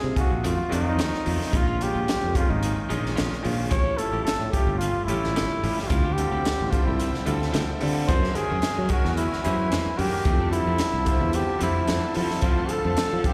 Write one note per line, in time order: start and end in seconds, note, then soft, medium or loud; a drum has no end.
0.00 0.12 C3 medium
0.00 0.14 C3 medium
0.00 0.12 F3 medium
0.00 0.12 A#3 medium
0.00 0.13 D#4 medium
0.00 0.13 G#4 medium
0.00 0.17 G#4 loud
0.00 muted clean electric guitar stroke soft
0.15 0.44 C3 medium
0.15 0.44 F3 medium
0.15 0.44 A#3 medium
0.15 0.44 D#4 medium
0.15 0.44 F4 medium
0.15 0.49 F#4 medium
0.15 kick medium
0.15 closed hi-hat medium
0.30 0.42 A#1 medium
0.30 muted clean electric guitar stroke soft
0.44 0.56 F2 medium
0.44 0.58 D#3 medium
0.44 0.57 A3 medium
0.44 0.57 C4 medium
0.44 0.73 F4 medium
0.44 0.57 F#4 medium
0.44 closed hi-hat medium
0.58 muted clean electric guitar stroke soft
0.58 muted fretless electric bass stroke soft
0.69 1.00 F2 medium
0.69 1.21 D#3 medium
0.69 0.86 D#3 medium
0.69 1.21 F#3 medium
0.69 1.21 A3 medium
0.69 0.86 A3 medium
0.69 1.22 C4 medium
0.69 0.85 C4 medium
0.69 1.22 F4 medium
0.69 0.86 F#4 medium
0.69 closed hi-hat medium
0.73 1.57 D#4 loud
0.99 1.11 D#2 medium
0.99 1.16 D#3 medium
0.99 1.16 A3 medium
0.99 1.16 C4 medium
0.99 1.16 F#4 medium
0.99 snare loud
0.99 closed hi-hat medium
1.14 muted fretless electric bass stroke soft
1.14 snare soft
1.25 1.38 F2 medium
1.25 1.53 D#3 medium
1.25 1.53 F#3 medium
1.25 1.53 A3 medium
1.25 1.53 C4 medium
1.25 1.54 F4 medium
1.25 muted clean electric guitar stroke soft
1.25 open hi-hat medium
1.41 muted clean electric guitar stroke soft
1.41 muted fretless electric bass stroke soft
1.41 snare soft
1.53 1.86 A#1 medium
1.53 1.67 G#3 medium
1.53 1.66 C#4 medium
1.53 1.66 F4 medium
1.53 1.84 F4 medium
1.53 kick loud
1.53 closed hi-hat medium
1.67 1.79 G#3 medium
1.67 1.79 C#4 medium
1.67 1.79 F4 medium
1.80 2.31 A#2 medium
1.80 2.31 D#3 medium
1.80 2.31 G#3 medium
1.80 2.32 C#4 medium
1.80 2.32 F4 medium
1.80 2.37 G4 medium
1.80 muted clean electric guitar stroke soft
1.80 closed hi-hat medium
1.94 2.06 A#1 medium
1.94 2.06 C#4 soft
1.94 2.06 F4 soft
2.07 muted clean electric guitar stroke soft
2.07 snare loud
2.07 closed hi-hat medium
2.21 2.45 F2 medium
2.21 muted clean electric guitar stroke soft
2.35 2.86 A#2 medium
2.35 2.86 D#3 medium
2.35 2.86 G#3 medium
2.35 2.86 C#4 medium
2.35 2.51 F4 medium
2.35 2.87 F4 medium
2.35 kick medium
2.35 closed hi-hat medium
2.49 2.72 G#1 medium
2.49 3.05 D#4 medium
2.49 muted clean electric guitar stroke soft
2.63 closed hi-hat medium
2.76 muted clean electric guitar stroke soft
2.88 3.12 A#1 medium
2.88 3.40 A#2 medium
2.88 3.40 D#3 medium
2.88 3.04 G#3 medium
2.88 3.40 G#3 medium
2.88 3.02 C#4 medium
2.88 3.41 C#4 medium
2.88 3.41 D#4 medium
2.88 3.02 F4 medium
2.88 closed hi-hat medium
3.03 muted clean electric guitar stroke soft
3.03 snare soft
3.16 3.29 A#1 medium
3.16 3.34 G#3 medium
3.16 3.34 C#4 medium
3.16 3.34 F4 medium
3.16 snare loud
3.16 closed hi-hat medium
3.33 muted fretless electric bass stroke soft
3.33 snare soft
3.43 3.72 A#1 medium
3.43 3.71 A#2 medium
3.43 3.71 D#3 medium
3.43 3.72 G#3 medium
3.43 3.72 C#4 medium
3.43 3.72 F4 medium
3.43 muted clean electric guitar stroke soft
3.43 open hi-hat medium
3.57 muted clean electric guitar stroke soft
3.70 3.94 A1 medium
3.70 3.85 F3 medium
3.70 3.84 C#4 medium
3.70 3.84 E4 medium
3.70 3.84 G4 medium
3.70 3.99 C#5 loud
3.70 kick loud
3.70 closed hi-hat medium
3.85 3.97 F3 medium
3.85 3.97 C#4 medium
3.85 3.97 E4 medium
3.85 3.97 G4 medium
3.97 4.49 F3 medium
3.97 4.49 G3 medium
3.97 4.50 A3 medium
3.97 4.49 C#4 medium
3.97 4.50 E4 medium
3.97 4.24 A4 medium
3.97 muted clean electric guitar stroke soft
3.97 closed hi-hat medium
4.12 4.24 A1 medium
4.12 4.26 C#4 soft
4.12 4.26 E4 soft
4.12 4.25 G4 soft
4.25 4.51 A4 medium
4.25 muted clean electric guitar stroke soft
4.25 muted fretless electric bass stroke soft
4.25 snare loud
4.25 closed hi-hat medium
4.39 4.51 A2 medium
4.39 muted clean electric guitar stroke soft
4.52 5.04 F3 medium
4.52 5.05 G3 medium
4.52 5.05 A3 medium
4.52 5.05 C#4 medium
4.52 4.77 G4 medium
4.52 5.05 G4 medium
4.52 kick medium
4.52 closed hi-hat medium
4.67 4.89 G1 medium
4.67 muted clean electric guitar stroke soft
4.78 5.04 F4 medium
4.78 closed hi-hat medium
4.94 muted clean electric guitar stroke soft
4.94 muted fretless electric bass stroke soft
5.05 5.36 A1 medium
5.05 5.59 F3 medium
5.05 5.23 F3 medium
5.05 5.59 G3 medium
5.05 5.78 E4 medium
5.05 closed hi-hat medium
5.09 5.59 A3 medium
5.09 5.22 C#4 medium
5.09 5.59 C#4 medium
5.09 5.21 E4 medium
5.09 5.59 G4 medium
5.09 5.22 G4 medium
5.23 muted clean electric guitar stroke soft
5.23 snare soft
5.36 5.47 G1 medium
5.36 5.53 F3 medium
5.36 5.53 C#4 medium
5.36 5.53 E4 medium
5.36 5.53 G4 medium
5.36 snare loud
5.36 closed hi-hat medium
5.50 muted fretless electric bass stroke soft
5.62 5.75 A1 medium
5.62 5.90 F3 medium
5.62 5.90 G3 medium
5.62 5.91 A3 medium
5.62 5.91 C#4 medium
5.62 5.91 G4 medium
5.62 muted clean electric guitar stroke soft
5.62 open hi-hat medium
5.77 muted clean electric guitar stroke soft
5.77 muted fretless electric bass stroke soft
5.77 snare soft
5.82 5.89 G4 medium
5.87 6.23 D2 medium
5.87 6.04 F3 medium
5.87 8.06 F3 medium
5.87 6.04 C4 medium
5.87 6.03 E4 medium
5.87 6.14 F4 medium
5.87 6.03 G4 medium
5.87 8.06 C5 medium
5.87 10.22 E5 medium
5.87 8.06 G5 medium
5.87 kick medium
5.87 closed hi-hat medium
6.04 6.16 F3 medium
6.04 6.17 C4 medium
6.04 6.17 E4 medium
6.04 6.17 G4 medium
6.13 6.72 G4 medium
6.17 6.68 D3 medium
6.17 6.68 G3 medium
6.17 6.68 C4 medium
6.17 6.68 F4 medium
6.17 6.69 A4 medium
6.17 closed hi-hat medium
6.31 6.42 D2 medium
6.31 6.43 C4 soft
6.31 6.44 E4 soft
6.31 6.44 G4 soft
6.44 muted clean electric guitar stroke soft
6.44 snare loud
6.44 closed hi-hat medium
6.59 6.82 A1 medium
6.59 muted clean electric guitar stroke soft
6.71 7.22 D3 medium
6.71 7.23 F3 medium
6.71 7.23 G3 medium
6.71 7.23 C4 medium
6.71 6.86 F4 medium
6.71 7.23 C5 medium
6.71 kick medium
6.71 closed hi-hat medium
6.85 7.09 C2 medium
6.85 7.40 E4 medium
6.85 muted clean electric guitar stroke soft
7.00 closed hi-hat medium
7.13 muted clean electric guitar stroke soft
7.13 snare soft
7.25 7.49 D2 medium
7.25 7.76 D3 medium
7.25 7.41 F3 medium
7.25 7.76 G3 medium
7.25 7.40 C4 medium
7.25 7.77 C4 medium
7.25 7.39 E4 medium
7.25 7.77 F4 medium
7.25 7.39 G4 medium
7.25 7.77 A4 medium
7.25 closed hi-hat medium
7.41 muted clean electric guitar stroke soft
7.41 snare soft
7.52 7.66 D2 medium
7.52 7.70 F3 medium
7.52 7.70 C4 medium
7.52 7.70 E4 medium
7.52 7.70 G4 medium
7.52 snare loud
7.52 closed hi-hat medium
7.70 muted fretless electric bass stroke soft
7.80 8.08 D3 medium
7.80 8.10 D3 medium
7.80 8.08 G3 medium
7.80 8.08 C4 medium
7.80 8.09 F4 medium
7.80 8.09 A4 medium
7.80 muted clean electric guitar stroke soft
7.80 open hi-hat medium
7.95 muted clean electric guitar stroke soft
8.07 8.30 F#2 medium
8.07 8.22 E3 medium
8.07 8.22 A#3 medium
8.07 8.22 C#4 medium
8.07 10.24 F#4 medium
8.07 8.21 G#4 medium
8.07 10.24 A#4 medium
8.07 8.37 C5 medium
8.07 10.24 G#5 medium
8.07 kick loud
8.07 closed hi-hat medium
8.23 8.35 E3 medium
8.23 8.36 A#3 medium
8.23 8.36 C#4 medium
8.23 8.36 G#4 medium
8.23 snare soft
8.34 8.85 D#3 medium
8.34 8.85 G#3 medium
8.34 8.85 C#4 medium
8.34 8.85 F#4 medium
8.34 8.92 G#4 loud
8.34 8.86 A#4 medium
8.34 muted clean electric guitar stroke soft
8.34 closed hi-hat medium
8.50 8.61 F#2 medium
8.50 8.61 A#3 soft
8.50 8.61 C#4 soft
8.50 8.62 G#4 soft
8.62 muted clean electric guitar stroke soft
8.62 muted fretless electric bass stroke soft
8.62 snare loud
8.62 closed hi-hat medium
8.77 8.88 F#3 medium
8.77 muted clean electric guitar stroke soft
8.88 9.39 D#3 medium
8.88 9.39 G#3 medium
8.88 9.40 C#4 medium
8.88 9.40 F#4 medium
8.88 9.16 F#4 medium
8.88 9.40 A#4 medium
8.88 kick medium
8.88 closed hi-hat medium
9.05 9.26 E2 medium
9.05 muted clean electric guitar stroke soft
9.05 snare soft
9.16 9.42 E4 medium
9.16 closed hi-hat medium
9.31 muted clean electric guitar stroke soft
9.31 muted fretless electric bass stroke soft
9.31 snare soft
9.44 9.72 F#2 medium
9.44 9.94 E3 medium
9.44 9.59 E3 medium
9.44 9.94 G#3 medium
9.44 9.59 A#3 medium
9.44 9.94 C#4 medium
9.44 9.58 C#4 medium
9.44 9.99 E4 loud
9.44 9.95 F#4 medium
9.44 9.58 G#4 medium
9.44 9.95 C5 medium
9.44 closed hi-hat medium
9.59 muted clean electric guitar stroke soft
9.72 9.83 E2 medium
9.72 9.89 E3 medium
9.72 9.89 A#3 medium
9.72 9.89 C#4 medium
9.72 9.89 G#4 medium
9.72 snare medium
9.72 closed hi-hat medium
9.86 muted fretless electric bass stroke soft
9.97 10.10 F#2 loud
9.97 10.25 D#3 medium
9.97 10.25 G#3 medium
9.97 10.25 C#4 medium
9.97 10.26 F#4 medium
9.97 10.51 G4 medium
9.97 10.26 A#4 medium
9.97 muted clean electric guitar stroke soft
9.97 open hi-hat medium
10.13 muted clean electric guitar stroke soft
10.13 muted fretless electric bass stroke soft
10.25 10.58 F2 loud
10.25 10.39 E3 medium
10.25 13.33 F3 medium
10.25 10.39 A3 medium
10.25 10.38 C4 medium
10.25 13.33 C5 medium
10.25 12.41 E5 medium
10.25 13.33 A5 medium
10.25 kick loud
10.25 closed hi-hat medium
10.39 10.52 E3 medium
10.39 10.52 A3 medium
10.39 10.53 C4 medium
10.50 11.02 D3 medium
10.50 11.02 F3 medium
10.50 11.02 G3 medium
10.50 11.02 C4 medium
10.50 11.37 E4 medium
10.50 11.02 A4 medium
10.50 muted clean electric guitar stroke soft
10.50 closed hi-hat medium
10.67 10.78 F2 medium
10.67 10.80 A3 soft
10.67 10.80 C4 medium
10.78 muted clean electric guitar stroke soft
10.78 snare loud
10.78 closed hi-hat medium
10.94 11.15 C2 medium
10.94 muted clean electric guitar stroke soft
11.05 11.56 D3 medium
11.05 11.56 G3 medium
11.05 11.57 C4 medium
11.05 11.57 F4 medium
11.05 11.57 C5 medium
11.05 kick medium
11.05 closed hi-hat medium
11.21 11.42 E2 medium
11.21 muted clean electric guitar stroke soft
11.33 11.62 G4 medium
11.33 closed hi-hat medium
11.49 muted clean electric guitar stroke soft
11.59 11.83 F2 medium
11.59 12.10 D3 medium
11.59 12.11 F3 medium
11.59 12.10 G3 medium
11.59 12.11 C4 medium
11.59 12.11 C5 medium
11.59 closed hi-hat medium
11.63 11.76 E3 medium
11.63 11.76 A3 medium
11.63 11.76 C4 medium
11.63 12.13 E4 medium
11.77 muted clean electric guitar stroke soft
11.88 12.00 F2 medium
11.88 12.06 E3 medium
11.88 12.06 A3 medium
11.88 12.07 C4 medium
11.88 snare loud
11.88 closed hi-hat medium
12.03 muted fretless electric bass stroke soft
12.14 12.65 D3 medium
12.14 12.27 F3 medium
12.14 12.65 G3 medium
12.14 12.65 C4 medium
12.14 12.41 E4 medium
12.14 12.65 F4 medium
12.14 12.66 A4 medium
12.14 muted clean electric guitar stroke soft
12.14 open hi-hat medium
12.30 muted clean electric guitar stroke soft
12.30 snare soft
12.41 12.57 E3 medium
12.41 12.64 F3 medium
12.41 12.56 A3 medium
12.41 12.56 C4 medium
12.41 12.72 F4 medium
12.41 13.33 F5 medium
12.41 kick loud
12.41 closed hi-hat medium
12.57 12.69 E3 soft
12.57 12.70 A3 medium
12.57 12.70 C4 medium
12.69 13.19 D3 medium
12.69 13.20 G3 medium
12.69 13.20 C4 medium
12.69 13.20 F4 medium
12.69 13.20 A4 medium
12.69 13.27 A4 medium
12.69 muted clean electric guitar stroke soft
12.69 closed hi-hat medium
12.84 12.95 F2 medium
12.84 12.97 A3 soft
12.84 12.97 C4 soft
12.97 muted clean electric guitar stroke soft
12.97 muted fretless electric bass stroke soft
12.97 snare loud
12.97 closed hi-hat medium
13.12 13.23 F3 medium
13.12 muted clean electric guitar stroke soft
13.23 13.33 D3 medium
13.23 13.33 G3 medium
13.23 13.33 C4 medium
13.23 13.33 F4 medium
13.23 13.33 G4 medium
13.23 13.33 A4 medium
13.23 kick medium
13.23 closed hi-hat medium